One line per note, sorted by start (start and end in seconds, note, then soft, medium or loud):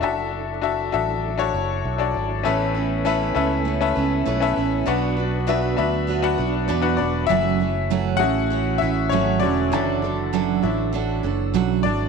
0.00 0.90 F#1 medium
0.00 2.42 F#3 medium
0.00 0.50 D4 medium
0.00 2.44 D4 medium
0.00 2.42 E4 medium
0.00 0.50 F#4 medium
0.00 2.42 A4 medium
0.00 0.51 A4 medium
0.00 0.51 E5 medium
0.62 0.87 D4 medium
0.62 0.87 F#4 medium
0.62 0.87 A4 medium
0.62 0.88 E5 medium
0.92 1.51 A1 medium
0.92 1.29 D4 medium
0.92 1.29 F#4 medium
0.92 1.30 A4 medium
0.92 1.30 E5 medium
1.38 1.87 D4 medium
1.38 1.87 F#4 medium
1.38 1.87 A4 medium
1.38 1.87 C#5 medium
1.54 1.83 F#1 medium
1.85 2.13 B1 medium
1.98 2.35 D4 medium
1.98 2.36 F#4 medium
1.98 2.36 A4 medium
1.98 2.36 D5 medium
2.15 2.44 G#1 medium
2.43 3.33 A1 loud
2.43 3.32 A2 medium
2.43 2.76 A3 medium
2.43 4.86 A3 medium
2.43 7.27 B3 medium
2.43 2.93 C#4 medium
2.43 4.86 C#4 medium
2.43 2.75 C#4 medium
2.43 2.76 E4 medium
2.43 2.93 A4 medium
2.43 2.93 B4 medium
2.43 2.73 B4 medium
2.43 2.93 E5 medium
2.75 3.05 C#4 soft
2.75 3.05 E4 soft
2.75 3.06 B4 medium
3.05 3.36 A3 medium
3.05 3.30 C#4 medium
3.05 3.36 C#4 medium
3.05 3.36 E4 medium
3.05 3.30 A4 medium
3.05 3.30 B4 medium
3.05 3.34 B4 medium
3.05 3.30 E5 medium
3.35 3.93 C#2 medium
3.35 3.72 C#4 medium
3.35 3.66 C#4 medium
3.35 3.65 E4 soft
3.35 3.72 A4 medium
3.35 3.66 B4 medium
3.35 3.72 B4 medium
3.35 3.72 E5 medium
3.65 3.96 A3 medium
3.65 3.96 C#4 medium
3.65 3.97 E4 medium
3.65 3.94 B4 medium
3.81 4.29 C#4 medium
3.81 4.30 A4 medium
3.81 4.30 B4 medium
3.81 4.30 E5 loud
3.95 4.25 C#2 medium
3.95 4.26 C#4 medium
3.95 4.25 E4 soft
3.95 4.26 B4 medium
4.26 4.56 B1 medium
4.26 4.57 A3 medium
4.26 4.56 C#4 medium
4.26 4.57 E4 medium
4.26 4.55 B4 medium
4.40 4.78 C#4 medium
4.40 4.78 A4 medium
4.40 4.78 B4 medium
4.40 4.78 E5 medium
4.56 4.86 A1 medium
4.56 4.87 C#4 soft
4.56 4.87 E4 soft
4.56 4.86 B4 medium
4.86 5.75 B1 medium
4.86 5.17 B2 medium
4.86 5.75 B2 medium
4.86 7.28 F#3 medium
4.86 5.18 B3 medium
4.86 5.35 D4 medium
4.86 5.18 D4 medium
4.86 7.28 D4 medium
4.86 5.35 F#4 medium
4.86 5.17 F#4 medium
4.86 5.16 B4 medium
4.86 5.36 B4 medium
4.86 5.36 F#5 medium
5.17 5.47 D4 soft
5.17 5.47 F#4 soft
5.17 5.48 B4 medium
5.47 5.78 B2 medium
5.47 5.78 B3 medium
5.47 5.72 D4 medium
5.47 5.79 D4 medium
5.47 5.72 F#4 medium
5.47 5.78 F#4 medium
5.47 5.72 B4 medium
5.47 5.76 B4 medium
5.47 5.73 E5 medium
5.77 6.35 D2 medium
5.77 6.14 D4 medium
5.77 6.07 D4 soft
5.77 6.14 F#4 medium
5.77 6.08 F#4 medium
5.77 6.09 B4 medium
5.77 6.14 B4 medium
5.77 6.15 E5 medium
6.07 6.39 B3 medium
6.07 6.39 D4 medium
6.07 6.38 F#4 medium
6.07 6.37 B4 medium
6.22 6.71 D4 medium
6.22 6.71 F#4 medium
6.22 6.72 B4 medium
6.22 6.72 F#5 loud
6.38 6.67 B1 medium
6.38 6.68 D4 soft
6.38 6.69 F#4 soft
6.38 6.69 B4 medium
6.68 6.98 E2 medium
6.68 6.99 B2 medium
6.68 7.00 B3 medium
6.68 7.00 D4 medium
6.68 6.99 F#4 medium
6.68 6.97 B4 medium
6.68 6.83 D5 medium
6.82 6.98 D4 medium
6.82 7.20 F#4 medium
6.82 7.20 B4 medium
6.82 7.20 F#5 medium
6.97 7.28 E1 medium
6.97 7.28 D4 medium
6.97 7.30 F#4 soft
6.97 7.30 B4 medium
6.97 7.30 D5 medium
6.97 7.27 B5 medium
7.01 7.30 D4 soft
7.27 8.21 F#1 loud
7.27 7.60 F#2 medium
7.27 7.61 E3 medium
7.27 7.60 F#3 medium
7.27 7.61 A3 medium
7.27 8.17 E4 medium
7.27 8.15 E5 loud
7.31 7.60 C#4 loud
7.31 7.59 F#4 medium
7.60 7.90 E3 soft
7.60 7.90 A3 medium
7.60 7.91 C#4 medium
7.60 7.91 F#4 medium
7.90 8.21 F#2 medium
7.90 8.21 E3 medium
7.90 8.21 F#3 medium
7.90 8.22 A3 medium
7.90 8.20 C#4 medium
7.90 8.19 F#4 loud
8.17 9.68 A3 medium
8.17 8.80 E4 medium
8.17 8.77 F#4 medium
8.17 8.51 F#4 medium
8.17 9.68 G#4 medium
8.17 8.82 F#5 loud
8.21 8.78 A1 medium
8.21 8.49 E3 soft
8.21 8.50 A3 soft
8.21 8.51 C#4 medium
8.50 8.81 E3 medium
8.50 8.82 A3 medium
8.50 8.81 C#4 medium
8.50 8.80 F#4 medium
8.78 9.10 A1 loud
8.78 9.10 E4 medium
8.78 9.12 F#4 medium
8.78 9.11 E5 medium
8.82 9.11 E3 soft
8.82 9.12 A3 soft
8.82 9.12 C#4 medium
9.09 9.42 G#1 loud
9.09 9.42 F#2 medium
9.09 9.43 E3 medium
9.09 9.42 F#3 medium
9.09 9.43 A3 medium
9.09 9.41 C#4 medium
9.09 9.42 C#4 medium
9.09 9.41 F#4 medium
9.09 9.39 C#5 medium
9.40 9.73 E1 medium
9.40 11.20 D3 medium
9.40 9.73 C#4 medium
9.40 9.72 F#4 medium
9.40 11.19 D5 loud
9.44 9.72 E3 soft
9.44 9.73 A3 medium
9.72 10.60 F#1 loud
9.72 10.03 F#2 medium
9.72 10.03 E3 medium
9.72 10.13 F#3 medium
9.72 10.03 F#3 medium
9.72 10.13 D4 medium
9.72 10.03 D4 medium
9.72 10.13 E4 medium
9.72 10.01 F#4 medium
9.72 10.03 A4 medium
10.02 10.32 E3 soft
10.02 10.33 D4 medium
10.02 10.33 F#4 medium
10.02 10.34 A4 medium
10.33 10.63 F#2 medium
10.33 10.64 E3 medium
10.33 10.64 F#3 medium
10.33 10.63 D4 loud
10.33 10.61 F#4 medium
10.33 10.62 A4 medium
10.62 11.20 A1 loud
10.62 10.91 E3 medium
10.62 10.90 F#3 medium
10.62 10.90 D4 soft
10.62 10.93 D4 medium
10.62 10.91 E4 medium
10.62 10.93 F#4 medium
10.62 10.94 A4 medium
10.93 11.24 E3 medium
10.93 11.24 D4 medium
10.93 11.22 F#4 medium
10.93 11.23 A4 medium
11.23 11.52 F#1 loud
11.23 11.53 E3 soft
11.23 11.54 D4 medium
11.23 11.54 F#4 medium
11.23 11.54 A4 medium
11.54 11.82 B1 loud
11.54 11.84 F#2 medium
11.54 11.85 E3 medium
11.54 11.85 F#3 medium
11.54 11.85 D4 medium
11.54 11.83 F#4 loud
11.54 11.84 A4 medium
11.83 12.09 G#1 medium
11.83 12.09 D4 medium
11.83 12.09 F#4 medium
11.83 12.09 A4 medium
11.83 12.09 D5 medium
11.88 12.09 E3 medium